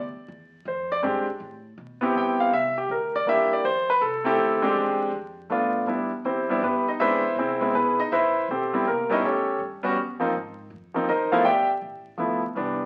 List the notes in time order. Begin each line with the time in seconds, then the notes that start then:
Already playing: D2
0.16 muted upright bass stroke
0.28 E2
0.65 F2 C5
0.92 D5
1.02 G2 G#3 C4 D4 G4
1.27 muted upright bass stroke
1.40 A2
1.78 B2
2.01 B3 C4 E4 G4
2.14 G2 G5
2.40 F5
2.52 C2 E5
2.78 G4
2.89 D2 A#4
3.16 D5
3.26 E2 A#3 D4 E4 G4 E5
3.51 D5, muted upright bass stroke
3.64 F2 C5
3.90 B4
4.01 C2 A4
4.24 A3 C4 E4 G4 A4
4.38 D2
4.62 G#3 C4 D4 G4
4.75 E2
5.12 F2
5.50 G2 A3 B3 D4 F4
5.86 E2 G3 B3 D4 E4
6.25 F2 C4 E4 G4 C5
6.49 G3 B3 D4 E4
6.62 G2 B3 E4 G4 B4
6.88 D#4 D#5
6.99 E2 G#3 B3 C4 D4 E4 B4 C5 E5
7.36 C2 C4 E4 G#4 C5
7.60 G#3 B3 C4 E4
7.74 B1 B3 E4 G#4 B4
8.00 D#4 D#5
8.12 A1 E4 B4 C5 E5
8.48 B1 C4 G4 A4 C5
8.73 G3 B3 C4 E4
8.85 C2 A#3 A#4
9.10 G3 B3 C#4 D#4 E4 D#5
9.21 A2 G4 A4 C#5
9.26 C#4
9.58 G2
9.83 G3 B3 C#4 F#4
9.95 F#2
10.19 F3 A#3 C4 D#4
10.33 G#2
10.70 F2
10.94 F3 A#3 C4 D#4
11.07 D#2 D#4 A#4 C5 D#5
11.32 F3 A3 B3 E4 F4 A#4 C5 F5
11.44 G1 G4 D5 E5 G5
11.82 A1
12.18 G1 F3 A3 B3 E4
12.55 C2 E3 G3 B3 D4